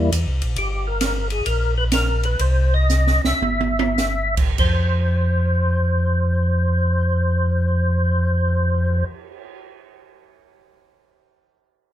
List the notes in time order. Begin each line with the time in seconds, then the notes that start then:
Already playing: G3 A#3 E4
0.00 E2
0.12 E2, hi-hat pedal, ride
0.27 C2
0.42 A#1, ride
0.56 G1 G4, ride
0.87 A#4
1.01 snare, hi-hat pedal, ride
1.30 G#4, ride
1.46 A#1 A#4, ride
1.78 B4
1.92 A#4, snare, hi-hat pedal, ride
2.23 B4, ride
2.39 C2 C5, ride
2.74 D#5
2.90 snare, hi-hat pedal
3.07 snare
3.24 C2 E5, snare
3.41 G1, high tom
3.61 high tom
3.79 high tom
3.98 snare, hi-hat pedal
4.37 kick, crash
4.58 F2 C5, kick, crash
5.00 cymbal swell